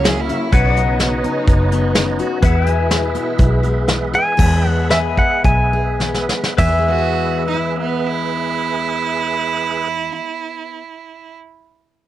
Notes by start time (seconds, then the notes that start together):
Already playing: C#2 C#3 F#3 A#3 E4 F#4 A#4 C#5 E5 F#5
0.04 F#3 C#4 G#4, snare, closed hi-hat
0.21 E4
0.29 E4, closed hi-hat
0.52 B1 B2 B3 D#4 F#4 B4 C#5 D#5 F#5, kick, closed hi-hat
0.77 B3 D#5, closed hi-hat
1.00 D#3, snare, closed hi-hat
1.24 C#4, closed hi-hat
1.47 F#1 F#2, kick, closed hi-hat
1.72 B3, closed hi-hat
1.95 D#3 C#4, snare, closed hi-hat
2.19 F#4, closed hi-hat
2.42 E2 B2 E3 G#3 E4 G#4 B4 E5 F#5, kick, closed hi-hat
2.60 G5
2.66 G#3, closed hi-hat
2.71 G#5
2.91 E3, snare, closed hi-hat
3.15 B3, closed hi-hat
3.38 B1 B2, kick, closed hi-hat
3.63 G#3, closed hi-hat
3.88 E3 B3, snare, closed hi-hat
4.13 G#4 G#5, closed hi-hat
4.37 E2 E3 G#3 B3 G#4 B4 E5, kick, crash
4.65 B3
4.69 F#5
4.90 E3 B4 E5 G#5, snare, closed hi-hat
5.17 F#5, kick
5.44 B1 B2 G#5, kick, closed hi-hat
5.73 G#4
6.00 E3 B3, snare
6.14 snare
6.29 snare
6.44 snare
6.57 E2 G#4 B4 E5 G#5, kick, floor tom, crash
6.68 E3
6.78 G#3
6.88 B3 F#4
6.98 G#4
7.48 E4 B4
7.54 E5
7.78 B3
8.07 E4